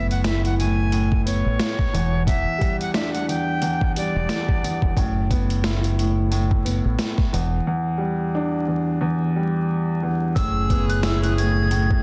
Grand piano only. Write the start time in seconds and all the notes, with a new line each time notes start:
Already playing: A2 B3
0.25 E4
0.60 A2
0.92 A2
1.25 B3
1.93 E2
2.27 E2
2.58 G3
2.95 D4
3.28 E2
3.62 E2
3.97 G3
4.64 E2
4.98 A2
5.31 B3
5.65 E4
6.00 A2
6.31 A2
6.65 B3
7.33 E2
7.67 E2
7.98 G3
8.35 D4
8.68 E2
9.01 E2
9.36 G3
10.03 E2
10.70 B3
11.04 E4
11.39 A2
11.71 A2